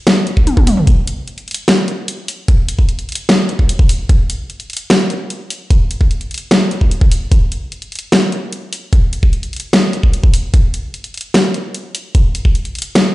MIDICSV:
0, 0, Header, 1, 2, 480
1, 0, Start_track
1, 0, Tempo, 402685
1, 1041, Time_signature, 4, 2, 24, 8
1, 15672, End_track
2, 0, Start_track
2, 0, Title_t, "Drums"
2, 80, Note_on_c, 9, 38, 119
2, 80, Note_on_c, 9, 42, 82
2, 200, Note_off_c, 9, 38, 0
2, 200, Note_off_c, 9, 42, 0
2, 320, Note_on_c, 9, 42, 56
2, 439, Note_off_c, 9, 42, 0
2, 440, Note_on_c, 9, 36, 59
2, 559, Note_off_c, 9, 36, 0
2, 560, Note_on_c, 9, 42, 83
2, 560, Note_on_c, 9, 48, 61
2, 679, Note_off_c, 9, 42, 0
2, 679, Note_off_c, 9, 48, 0
2, 680, Note_on_c, 9, 36, 105
2, 680, Note_on_c, 9, 48, 66
2, 799, Note_off_c, 9, 48, 0
2, 800, Note_off_c, 9, 36, 0
2, 800, Note_on_c, 9, 46, 96
2, 800, Note_on_c, 9, 47, 86
2, 919, Note_off_c, 9, 46, 0
2, 919, Note_off_c, 9, 47, 0
2, 921, Note_on_c, 9, 45, 82
2, 1040, Note_off_c, 9, 45, 0
2, 1040, Note_on_c, 9, 36, 122
2, 1040, Note_on_c, 9, 42, 86
2, 1159, Note_off_c, 9, 36, 0
2, 1160, Note_off_c, 9, 42, 0
2, 1281, Note_on_c, 9, 42, 85
2, 1400, Note_off_c, 9, 42, 0
2, 1521, Note_on_c, 9, 42, 55
2, 1640, Note_off_c, 9, 42, 0
2, 1642, Note_on_c, 9, 42, 40
2, 1761, Note_off_c, 9, 42, 0
2, 1761, Note_on_c, 9, 42, 55
2, 1801, Note_off_c, 9, 42, 0
2, 1801, Note_on_c, 9, 42, 72
2, 1841, Note_off_c, 9, 42, 0
2, 1841, Note_on_c, 9, 42, 87
2, 1960, Note_off_c, 9, 42, 0
2, 2001, Note_on_c, 9, 38, 122
2, 2001, Note_on_c, 9, 42, 84
2, 2120, Note_off_c, 9, 38, 0
2, 2120, Note_off_c, 9, 42, 0
2, 2241, Note_on_c, 9, 42, 58
2, 2360, Note_off_c, 9, 42, 0
2, 2481, Note_on_c, 9, 42, 86
2, 2601, Note_off_c, 9, 42, 0
2, 2721, Note_on_c, 9, 46, 97
2, 2841, Note_off_c, 9, 46, 0
2, 2960, Note_on_c, 9, 42, 85
2, 2961, Note_on_c, 9, 36, 127
2, 3080, Note_off_c, 9, 36, 0
2, 3080, Note_off_c, 9, 42, 0
2, 3201, Note_on_c, 9, 42, 86
2, 3320, Note_off_c, 9, 42, 0
2, 3321, Note_on_c, 9, 36, 65
2, 3440, Note_off_c, 9, 36, 0
2, 3441, Note_on_c, 9, 42, 57
2, 3560, Note_off_c, 9, 42, 0
2, 3561, Note_on_c, 9, 42, 41
2, 3680, Note_off_c, 9, 42, 0
2, 3681, Note_on_c, 9, 42, 54
2, 3721, Note_off_c, 9, 42, 0
2, 3721, Note_on_c, 9, 42, 69
2, 3760, Note_off_c, 9, 42, 0
2, 3760, Note_on_c, 9, 42, 87
2, 3879, Note_off_c, 9, 42, 0
2, 3921, Note_on_c, 9, 38, 127
2, 3921, Note_on_c, 9, 42, 84
2, 4040, Note_off_c, 9, 38, 0
2, 4040, Note_off_c, 9, 42, 0
2, 4161, Note_on_c, 9, 42, 56
2, 4280, Note_off_c, 9, 42, 0
2, 4281, Note_on_c, 9, 36, 64
2, 4400, Note_off_c, 9, 36, 0
2, 4401, Note_on_c, 9, 42, 86
2, 4520, Note_off_c, 9, 42, 0
2, 4520, Note_on_c, 9, 36, 115
2, 4640, Note_off_c, 9, 36, 0
2, 4641, Note_on_c, 9, 46, 96
2, 4760, Note_off_c, 9, 46, 0
2, 4880, Note_on_c, 9, 36, 127
2, 4881, Note_on_c, 9, 42, 82
2, 4999, Note_off_c, 9, 36, 0
2, 5000, Note_off_c, 9, 42, 0
2, 5122, Note_on_c, 9, 42, 86
2, 5241, Note_off_c, 9, 42, 0
2, 5361, Note_on_c, 9, 42, 55
2, 5480, Note_off_c, 9, 42, 0
2, 5481, Note_on_c, 9, 42, 39
2, 5600, Note_off_c, 9, 42, 0
2, 5600, Note_on_c, 9, 42, 54
2, 5641, Note_off_c, 9, 42, 0
2, 5641, Note_on_c, 9, 42, 71
2, 5681, Note_off_c, 9, 42, 0
2, 5681, Note_on_c, 9, 42, 87
2, 5801, Note_off_c, 9, 42, 0
2, 5841, Note_on_c, 9, 38, 127
2, 5841, Note_on_c, 9, 42, 83
2, 5960, Note_off_c, 9, 38, 0
2, 5960, Note_off_c, 9, 42, 0
2, 6081, Note_on_c, 9, 42, 56
2, 6200, Note_off_c, 9, 42, 0
2, 6321, Note_on_c, 9, 42, 82
2, 6440, Note_off_c, 9, 42, 0
2, 6561, Note_on_c, 9, 46, 90
2, 6680, Note_off_c, 9, 46, 0
2, 6800, Note_on_c, 9, 36, 125
2, 6801, Note_on_c, 9, 42, 81
2, 6920, Note_off_c, 9, 36, 0
2, 6920, Note_off_c, 9, 42, 0
2, 7041, Note_on_c, 9, 42, 80
2, 7160, Note_off_c, 9, 42, 0
2, 7161, Note_on_c, 9, 36, 64
2, 7280, Note_off_c, 9, 36, 0
2, 7281, Note_on_c, 9, 42, 54
2, 7400, Note_off_c, 9, 42, 0
2, 7401, Note_on_c, 9, 42, 38
2, 7520, Note_off_c, 9, 42, 0
2, 7521, Note_on_c, 9, 42, 50
2, 7561, Note_off_c, 9, 42, 0
2, 7561, Note_on_c, 9, 42, 67
2, 7601, Note_off_c, 9, 42, 0
2, 7601, Note_on_c, 9, 42, 83
2, 7720, Note_off_c, 9, 42, 0
2, 7761, Note_on_c, 9, 38, 127
2, 7761, Note_on_c, 9, 42, 81
2, 7880, Note_off_c, 9, 38, 0
2, 7880, Note_off_c, 9, 42, 0
2, 8002, Note_on_c, 9, 42, 53
2, 8120, Note_on_c, 9, 36, 66
2, 8121, Note_off_c, 9, 42, 0
2, 8240, Note_off_c, 9, 36, 0
2, 8241, Note_on_c, 9, 42, 81
2, 8360, Note_on_c, 9, 36, 111
2, 8361, Note_off_c, 9, 42, 0
2, 8480, Note_off_c, 9, 36, 0
2, 8482, Note_on_c, 9, 46, 88
2, 8601, Note_off_c, 9, 46, 0
2, 8720, Note_on_c, 9, 36, 120
2, 8722, Note_on_c, 9, 42, 76
2, 8839, Note_off_c, 9, 36, 0
2, 8841, Note_off_c, 9, 42, 0
2, 8961, Note_on_c, 9, 42, 79
2, 9081, Note_off_c, 9, 42, 0
2, 9202, Note_on_c, 9, 42, 52
2, 9321, Note_off_c, 9, 42, 0
2, 9322, Note_on_c, 9, 42, 37
2, 9441, Note_off_c, 9, 42, 0
2, 9441, Note_on_c, 9, 42, 49
2, 9482, Note_off_c, 9, 42, 0
2, 9482, Note_on_c, 9, 42, 65
2, 9521, Note_off_c, 9, 42, 0
2, 9521, Note_on_c, 9, 42, 81
2, 9640, Note_off_c, 9, 42, 0
2, 9682, Note_on_c, 9, 38, 125
2, 9682, Note_on_c, 9, 42, 80
2, 9801, Note_off_c, 9, 38, 0
2, 9801, Note_off_c, 9, 42, 0
2, 9922, Note_on_c, 9, 42, 52
2, 10041, Note_off_c, 9, 42, 0
2, 10162, Note_on_c, 9, 42, 78
2, 10281, Note_off_c, 9, 42, 0
2, 10401, Note_on_c, 9, 46, 90
2, 10520, Note_off_c, 9, 46, 0
2, 10640, Note_on_c, 9, 36, 116
2, 10641, Note_on_c, 9, 42, 77
2, 10760, Note_off_c, 9, 36, 0
2, 10761, Note_off_c, 9, 42, 0
2, 10881, Note_on_c, 9, 42, 80
2, 11000, Note_off_c, 9, 42, 0
2, 11001, Note_on_c, 9, 36, 60
2, 11120, Note_off_c, 9, 36, 0
2, 11120, Note_on_c, 9, 42, 51
2, 11240, Note_off_c, 9, 42, 0
2, 11242, Note_on_c, 9, 42, 38
2, 11360, Note_off_c, 9, 42, 0
2, 11360, Note_on_c, 9, 42, 49
2, 11401, Note_off_c, 9, 42, 0
2, 11401, Note_on_c, 9, 42, 65
2, 11441, Note_off_c, 9, 42, 0
2, 11441, Note_on_c, 9, 42, 81
2, 11560, Note_off_c, 9, 42, 0
2, 11600, Note_on_c, 9, 38, 117
2, 11600, Note_on_c, 9, 42, 76
2, 11719, Note_off_c, 9, 38, 0
2, 11719, Note_off_c, 9, 42, 0
2, 11840, Note_on_c, 9, 42, 52
2, 11960, Note_off_c, 9, 42, 0
2, 11961, Note_on_c, 9, 36, 60
2, 12080, Note_off_c, 9, 36, 0
2, 12081, Note_on_c, 9, 42, 79
2, 12200, Note_off_c, 9, 42, 0
2, 12200, Note_on_c, 9, 36, 106
2, 12320, Note_off_c, 9, 36, 0
2, 12321, Note_on_c, 9, 46, 92
2, 12440, Note_off_c, 9, 46, 0
2, 12560, Note_on_c, 9, 36, 117
2, 12560, Note_on_c, 9, 42, 79
2, 12679, Note_off_c, 9, 36, 0
2, 12679, Note_off_c, 9, 42, 0
2, 12801, Note_on_c, 9, 42, 81
2, 12920, Note_off_c, 9, 42, 0
2, 13041, Note_on_c, 9, 42, 53
2, 13160, Note_off_c, 9, 42, 0
2, 13161, Note_on_c, 9, 42, 39
2, 13280, Note_off_c, 9, 42, 0
2, 13281, Note_on_c, 9, 42, 50
2, 13321, Note_off_c, 9, 42, 0
2, 13321, Note_on_c, 9, 42, 66
2, 13361, Note_off_c, 9, 42, 0
2, 13361, Note_on_c, 9, 42, 83
2, 13480, Note_off_c, 9, 42, 0
2, 13520, Note_on_c, 9, 38, 115
2, 13520, Note_on_c, 9, 42, 81
2, 13640, Note_off_c, 9, 38, 0
2, 13640, Note_off_c, 9, 42, 0
2, 13760, Note_on_c, 9, 42, 54
2, 13880, Note_off_c, 9, 42, 0
2, 14000, Note_on_c, 9, 42, 80
2, 14119, Note_off_c, 9, 42, 0
2, 14240, Note_on_c, 9, 46, 97
2, 14359, Note_off_c, 9, 46, 0
2, 14480, Note_on_c, 9, 36, 120
2, 14481, Note_on_c, 9, 42, 81
2, 14599, Note_off_c, 9, 36, 0
2, 14600, Note_off_c, 9, 42, 0
2, 14720, Note_on_c, 9, 42, 84
2, 14839, Note_off_c, 9, 42, 0
2, 14841, Note_on_c, 9, 36, 60
2, 14960, Note_off_c, 9, 36, 0
2, 14960, Note_on_c, 9, 42, 56
2, 15079, Note_off_c, 9, 42, 0
2, 15080, Note_on_c, 9, 42, 39
2, 15200, Note_off_c, 9, 42, 0
2, 15201, Note_on_c, 9, 42, 53
2, 15240, Note_off_c, 9, 42, 0
2, 15240, Note_on_c, 9, 42, 71
2, 15280, Note_off_c, 9, 42, 0
2, 15280, Note_on_c, 9, 42, 85
2, 15400, Note_off_c, 9, 42, 0
2, 15440, Note_on_c, 9, 38, 119
2, 15440, Note_on_c, 9, 42, 83
2, 15560, Note_off_c, 9, 38, 0
2, 15560, Note_off_c, 9, 42, 0
2, 15672, End_track
0, 0, End_of_file